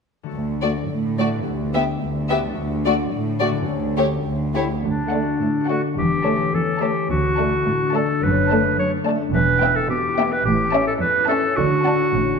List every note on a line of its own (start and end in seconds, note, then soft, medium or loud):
0.23 1.28 D3 soft
0.23 1.47 A3 soft
0.23 1.45 F#4 soft
0.29 1.47 A4 soft
0.34 0.82 D2 soft
0.62 0.71 A3 soft
0.62 0.70 F#4 soft
0.62 0.70 D5 soft
0.90 1.38 A2 soft
1.19 1.27 A3 soft
1.19 1.28 F#4 soft
1.19 1.27 D5 soft
1.29 2.39 D3 soft
1.34 2.53 B3 soft
1.38 2.56 E4 soft
1.43 1.93 D2 soft
1.43 2.58 G4 soft
1.74 1.83 B3 soft
1.74 1.83 G4 soft
1.74 1.82 E5 soft
2.03 2.49 D2 soft
2.29 2.37 B3 soft
2.29 2.38 G4 soft
2.29 2.38 E5 soft
2.40 3.50 D3 soft
2.45 3.54 A3 soft
2.49 3.67 D4 soft
2.54 3.04 D2 soft
2.54 3.69 F#4 soft
2.86 2.94 A3 soft
2.86 2.94 F#4 soft
2.86 2.94 D5 soft
3.13 3.60 A2 soft
3.41 3.49 A3 soft
3.41 3.49 F#4 soft
3.41 3.49 D5 soft
3.51 4.78 D3 soft
3.55 7.45 A3 soft
3.60 4.82 C#4 soft
3.65 4.84 G4 soft
3.69 4.16 D2 medium
3.97 4.05 A3 soft
3.97 4.06 G4 soft
3.97 4.06 C#5 soft
4.25 4.74 D2 soft
4.54 4.62 A3 soft
4.54 4.68 E4 soft
4.54 4.63 G4 soft
4.54 4.64 C#5 soft
4.84 5.29 D2 soft
4.84 5.30 D2 soft
4.84 6.01 D3 soft
4.84 5.68 D4 medium
5.03 5.78 D4 soft
5.12 5.34 A3 soft
5.12 5.34 D5 soft
5.12 5.34 F#5 soft
5.22 5.59 F#4 soft
5.41 5.86 A2 soft
5.41 6.35 A4 soft
5.60 6.01 F#4 soft
5.68 5.91 A3 soft
5.68 5.82 F#4 medium
5.68 5.91 D5 soft
5.68 5.91 F#5 soft
5.80 6.01 D4 soft
5.98 6.43 E1 soft
5.98 6.43 E2 soft
5.98 7.13 E3 soft
5.98 6.56 G4 medium
6.17 6.54 C#4 soft
6.25 6.47 A3 soft
6.25 6.47 C#5 soft
6.25 6.47 A5 soft
6.36 6.72 A4 soft
6.54 6.99 E2 soft
6.54 6.91 C#4 soft
6.54 6.83 A4 medium
6.73 7.48 A4 soft
6.81 7.03 A3 soft
6.81 7.09 G4 medium
6.81 7.03 C#5 soft
6.81 7.03 A5 soft
6.93 7.13 C#4 soft
7.10 7.55 D2 medium
7.10 7.55 D2 soft
7.10 8.26 D3 soft
7.10 7.97 F#4 medium
7.30 7.66 D4 soft
7.38 7.60 A3 soft
7.38 7.60 D5 soft
7.38 7.60 A5 soft
7.49 7.85 A4 soft
7.67 8.12 A2 soft
7.67 8.04 D4 soft
7.86 8.77 A4 soft
7.94 8.16 A3 soft
7.94 8.25 A4 medium
7.94 8.16 D5 soft
7.94 8.16 A5 soft
8.05 8.59 D4 soft
8.23 8.67 F#1 medium
8.23 9.37 F#2 soft
8.23 8.67 F#2 medium
8.23 8.78 B4 medium
8.41 9.14 A3 soft
8.51 8.72 A3 soft
8.51 8.72 D5 soft
8.51 8.72 A5 soft
8.60 8.96 D4 soft
8.78 9.23 F#2 soft
8.78 9.37 A4 soft
8.78 8.91 C#5 medium
8.97 9.37 D4 soft
9.07 9.28 A3 soft
9.07 9.28 D5 soft
9.07 9.28 A5 soft
9.15 9.37 A3 soft
9.34 9.79 E1 medium
9.34 10.48 E2 soft
9.34 9.79 E2 medium
9.34 9.77 B4 medium
9.53 10.26 B3 soft
9.63 9.84 B3 soft
9.63 9.84 E5 soft
9.63 9.84 G5 soft
9.72 10.08 E4 soft
9.72 9.89 A4 medium
9.90 10.34 B2 medium
9.90 10.33 G4 medium
9.90 11.59 G4 soft
10.09 10.81 E4 soft
10.18 10.39 B3 soft
10.18 10.39 E5 soft
10.18 10.39 G5 soft
10.28 10.48 B3 soft
10.32 10.45 B4 medium
10.45 10.90 A1 medium
10.45 10.89 A2 medium
10.45 11.59 A2 soft
10.45 10.86 G4 medium
10.64 11.37 C#4 soft
10.74 10.94 C#4 soft
10.74 10.94 E5 soft
10.74 10.94 A5 soft
10.83 11.19 E4 soft
10.87 10.93 A4 medium
11.00 11.45 E2 medium
11.00 11.94 A4 soft
11.00 11.27 B4 medium
11.20 11.59 E4 soft
11.28 11.49 C#4 soft
11.28 11.58 A4 medium
11.28 11.49 E5 soft
11.28 11.49 A5 soft
11.38 11.59 C#4 soft
11.56 12.02 D2 medium
11.56 12.17 D3 soft
11.56 12.02 D3 medium
11.56 12.39 F#4 medium
11.76 12.17 D4 soft
11.84 12.07 D4 soft
11.84 12.06 F#5 soft
11.84 12.06 A5 soft
11.95 12.17 F#4 soft
11.95 12.39 A4 soft
12.14 12.39 A1 medium
12.14 12.39 A2 soft
12.34 12.39 C#4 soft